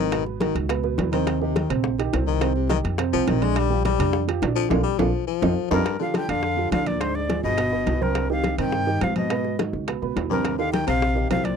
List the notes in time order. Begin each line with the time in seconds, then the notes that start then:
Already playing: G#1 D#3
0.12 B2 B3 B4, high bongo, high conga, high timbale
0.26 B2, high bongo, high conga
0.40 D#3 D#4 F#4, high bongo, high conga, high timbale, low timbale
0.55 C#2, high bongo, high conga, high timbale
0.69 B2 B3 B4, high bongo, high conga, high timbale
0.83 B2 B3 B4, high bongo, high conga
0.98 D#2, high bongo, low bongo, high conga, high timbale, low timbale
1.12 C3 D#3 C4 C5, high conga, high timbale
1.27 high bongo, high conga, high timbale
1.41 C3 D#3 D#4 G4, high bongo, high conga
1.56 D#3, high bongo, high conga, high timbale, low timbale
1.70 A#1 C3 C4 C5, high bongo, high conga, low conga, high timbale
1.84 high bongo, high conga, low conga
1.99 D#3 D#4 G4, high bongo, high conga, high timbale
2.13 C2 C3 C4 C5, high bongo, low bongo, high conga, high timbale, low timbale
2.27 D#3
2.41 C3 C4 C5, high bongo, high conga, high timbale
2.56 C3, high bongo, high conga
2.70 D#3 D#4 G4, high bongo, high conga, high timbale, low timbale
2.84 F2, high bongo, high conga, high timbale
2.98 C3 C4 C5, high bongo, high conga, high timbale
3.13 C2 C3 F3 C4 C5, high bongo, high conga
3.27 A#1 D#3, high bongo, low bongo, high conga, high timbale, low timbale
3.42 D3 G#3 D4 D5, high conga, high timbale
3.56 G3, high bongo, high conga, high timbale
3.70 F3 F4 G4, high bongo, high conga
3.85 G3, high bongo, high conga, high timbale, low timbale
3.99 F2 D3 D4 D5, high bongo, high conga, low conga, high timbale
4.13 high bongo, high conga
4.27 F3 F4 G4, high bongo, high conga, high timbale
4.42 A#1 D3 D4 D5, high bongo, low bongo, high timbale, low timbale
4.55 F3
4.70 A#1 D3 A#3 D4 F4, low bongo, high conga, high timbale
4.83 G3
4.98 A#1 F3 A#3 D4 F4, low bongo, high conga, high timbale
5.27 F3
5.42 F2 C4 D#4 F4, low bongo, high conga, high timbale
5.70 F2 G2 C4 D#4 F4 A#4, low bongo, high conga, high timbale
5.86 high bongo, high timbale
5.99 D3 F3 F4 G4 F5, high bongo, high conga
6.14 D3 G5, high bongo, high conga, high timbale, low timbale
6.29 F2 D3 D4 D5 F5, high bongo, high conga, high timbale
6.43 high bongo, high conga
6.57 F3 F4 G4, high bongo, high conga
6.72 D2 D3 D4 D5 F5, high bongo, low bongo, high conga, high timbale, low timbale
6.86 A#2 D5, high conga, high timbale
7.00 G#2 D3 D4 C5 D5, high bongo, high conga, high timbale
7.15 G#2 D5, high bongo, high conga
7.29 F3 F4 G#4, high bongo, high conga, high timbale, low timbale
7.43 G1 B2 D#5, high bongo, high conga
7.57 B2 B3 B4, high bongo, high conga, high timbale
7.72 B2 B3 B4, high bongo, high conga
7.86 C2, high bongo, low bongo, high conga, high timbale, low timbale
8.01 G2 C3 C4 A#4 C5, high conga
8.15 high bongo, high conga, high timbale
8.30 C3 D#3 D#4 G4 F5, high bongo, high conga
8.44 high bongo, high conga, high timbale, low timbale
8.58 G2 C3 D#3 C4 C5 G5, high bongo, high conga, high timbale
8.72 high bongo, high conga
8.87 D#3 D#4 G4, high bongo, high conga
9.01 G#2 C3 C4 C5 F5, high bongo, low bongo, high conga, high timbale, low timbale
9.15 B2 D#5, high conga, high timbale
9.30 B2 B3 B4, high bongo, high conga, high timbale
9.45 high bongo, high conga
9.59 D#3 D#4 F#4, high bongo, high conga, high timbale, low timbale
9.73 C#2, high bongo, high conga
9.87 B2 B3 B4, high bongo, high conga, high timbale
10.02 C#2 B2 B3 B4, high bongo, high conga
10.16 D#2, high bongo, low bongo, high conga, high timbale, low timbale
10.30 G2 C3 C4 A#4 C5, high conga
10.45 high bongo, high conga, high timbale
10.58 D3 D#3 D#4 G4 F5, high bongo, high conga
10.73 D#3 G5, high bongo, high conga, high timbale, low timbale
10.87 A#1 C3 C4 C5 F5, high bongo, high timbale
11.02 high bongo, high conga
11.15 D#3 D#4 G4, high bongo, high conga
11.30 C2 C3 C4 C5 F5, high bongo, low bongo, high conga, high timbale, low timbale
11.44 A#2 D5, high conga, high timbale